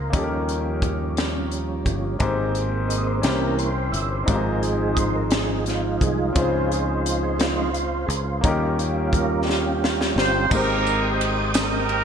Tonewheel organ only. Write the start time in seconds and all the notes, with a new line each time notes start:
Already playing: A#4
0.13 F3 G3 C#4
2.20 A#3 C4
2.88 D#5
3.07 C5
3.23 E3 A#3 C#4 A#4
3.59 C5
3.92 E5
4.11 C5
4.29 F3 G#3 D#4 A#4
4.62 G#4
4.95 D#5
4.99 C5
5.16 A#4
5.32 G#4
5.68 F4
6.02 G#4
6.18 F4
6.36 F3 D#4 C5
6.69 G#4
7.06 F4
7.23 G#4
7.37 F3 G#3 D#4 F4
7.73 F4
8.07 G#4
8.25 F4
8.41 G3 C#4 F4
9.12 A#4
9.45 G4
10.52 C4 G5 D#6